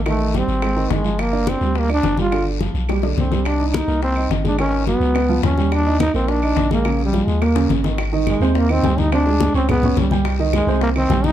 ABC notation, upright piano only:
X:1
M:4/4
L:1/8
Q:1/4=212
K:Eb
V:1 name="Upright piano"
[E,E]2 [G,G]2 [A,A] [E,E]2 [F,F]- | [F,F] [Dd]2 [G,G]2 [Dd]2 [G,G] | [D,D]2 [F,F]2 [G,G] [D,D]2 [G,G]- | [G,G] [Ee]2 [B,B]2 [Ee]2 [A,A] |
[E,E]2 [_G,_G]2 [_C_c] [F,F]2 [=G,=G]- | [G,G] [Ee]2 [B,B]2 [Ee]2 [A,A] | [_D,_D]2 [F,F]2 [B,B] [D,D]2 [E,E] | [K:Ab] z [E,Ee]2 [C,Cc]2 [E,Ee] [G,Gg]2 |
[C,Cc] [A,Aa]2 [Ddd'] [A,Aa] [Ddd']2 [G,Gg]- | [G,Gg] [E,Ee]2 [C,Cc]2 [E,Ee] [G,Gg]2 |]